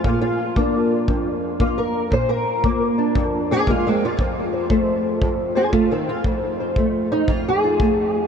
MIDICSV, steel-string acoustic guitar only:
0, 0, Header, 1, 2, 480
1, 0, Start_track
1, 0, Key_signature, -1, "major"
1, 0, Tempo, 516796
1, 48, Time_signature, 4, 2, 24, 8
1, 7682, End_track
2, 0, Start_track
2, 0, Title_t, "Steel-string acoustic guitar"
2, 0, Program_c, 0, 25
2, 39, Note_on_c, 0, 65, 86
2, 53, Note_on_c, 0, 46, 72
2, 189, Note_off_c, 0, 65, 0
2, 201, Note_on_c, 0, 65, 93
2, 522, Note_on_c, 0, 58, 58
2, 527, Note_on_c, 0, 62, 44
2, 1006, Note_on_c, 0, 41, 66
2, 1013, Note_off_c, 0, 46, 0
2, 1167, Note_off_c, 0, 65, 0
2, 1470, Note_off_c, 0, 58, 0
2, 1481, Note_on_c, 0, 58, 63
2, 1492, Note_on_c, 0, 65, 85
2, 1651, Note_on_c, 0, 70, 86
2, 1652, Note_off_c, 0, 65, 0
2, 1947, Note_off_c, 0, 58, 0
2, 1951, Note_off_c, 0, 62, 0
2, 1955, Note_on_c, 0, 46, 65
2, 1970, Note_off_c, 0, 41, 0
2, 1972, Note_off_c, 0, 70, 0
2, 1980, Note_on_c, 0, 72, 98
2, 2127, Note_on_c, 0, 70, 109
2, 2137, Note_off_c, 0, 72, 0
2, 2449, Note_on_c, 0, 58, 69
2, 2611, Note_off_c, 0, 70, 0
2, 2767, Note_on_c, 0, 62, 51
2, 2925, Note_off_c, 0, 46, 0
2, 2927, Note_on_c, 0, 41, 65
2, 3263, Note_on_c, 0, 60, 91
2, 3271, Note_on_c, 0, 68, 111
2, 3333, Note_off_c, 0, 60, 0
2, 3398, Note_off_c, 0, 58, 0
2, 3409, Note_on_c, 0, 58, 67
2, 3415, Note_off_c, 0, 62, 0
2, 3423, Note_off_c, 0, 68, 0
2, 3435, Note_on_c, 0, 56, 81
2, 3441, Note_on_c, 0, 65, 100
2, 3581, Note_off_c, 0, 56, 0
2, 3587, Note_off_c, 0, 65, 0
2, 3592, Note_on_c, 0, 56, 82
2, 3603, Note_on_c, 0, 60, 91
2, 3744, Note_off_c, 0, 56, 0
2, 3749, Note_off_c, 0, 60, 0
2, 3761, Note_on_c, 0, 65, 103
2, 3872, Note_off_c, 0, 58, 0
2, 3876, Note_off_c, 0, 41, 0
2, 3882, Note_off_c, 0, 65, 0
2, 3887, Note_on_c, 0, 41, 73
2, 3893, Note_on_c, 0, 65, 45
2, 3899, Note_on_c, 0, 72, 50
2, 4206, Note_off_c, 0, 72, 0
2, 4209, Note_on_c, 0, 72, 46
2, 4363, Note_on_c, 0, 57, 62
2, 4365, Note_off_c, 0, 72, 0
2, 4369, Note_on_c, 0, 72, 49
2, 4846, Note_off_c, 0, 41, 0
2, 4850, Note_on_c, 0, 41, 62
2, 5154, Note_off_c, 0, 72, 0
2, 5158, Note_on_c, 0, 72, 56
2, 5168, Note_on_c, 0, 60, 95
2, 5172, Note_on_c, 0, 68, 103
2, 5246, Note_off_c, 0, 60, 0
2, 5306, Note_off_c, 0, 65, 0
2, 5307, Note_off_c, 0, 57, 0
2, 5315, Note_off_c, 0, 72, 0
2, 5318, Note_on_c, 0, 57, 85
2, 5319, Note_on_c, 0, 65, 82
2, 5333, Note_off_c, 0, 68, 0
2, 5486, Note_off_c, 0, 57, 0
2, 5486, Note_off_c, 0, 65, 0
2, 5492, Note_on_c, 0, 51, 79
2, 5499, Note_on_c, 0, 60, 89
2, 5654, Note_off_c, 0, 51, 0
2, 5655, Note_off_c, 0, 60, 0
2, 5658, Note_on_c, 0, 65, 97
2, 5791, Note_off_c, 0, 41, 0
2, 5796, Note_off_c, 0, 65, 0
2, 5802, Note_on_c, 0, 41, 72
2, 5807, Note_on_c, 0, 65, 50
2, 5816, Note_on_c, 0, 72, 47
2, 6127, Note_off_c, 0, 72, 0
2, 6130, Note_on_c, 0, 72, 43
2, 6294, Note_on_c, 0, 57, 57
2, 6607, Note_off_c, 0, 65, 0
2, 6610, Note_on_c, 0, 63, 97
2, 6754, Note_off_c, 0, 41, 0
2, 6765, Note_on_c, 0, 41, 65
2, 6770, Note_off_c, 0, 72, 0
2, 6770, Note_on_c, 0, 65, 88
2, 6771, Note_off_c, 0, 63, 0
2, 6931, Note_off_c, 0, 65, 0
2, 6950, Note_on_c, 0, 68, 105
2, 7094, Note_on_c, 0, 65, 48
2, 7238, Note_off_c, 0, 57, 0
2, 7249, Note_on_c, 0, 57, 54
2, 7682, Note_off_c, 0, 41, 0
2, 7682, Note_off_c, 0, 57, 0
2, 7682, Note_off_c, 0, 65, 0
2, 7682, Note_off_c, 0, 68, 0
2, 7682, End_track
0, 0, End_of_file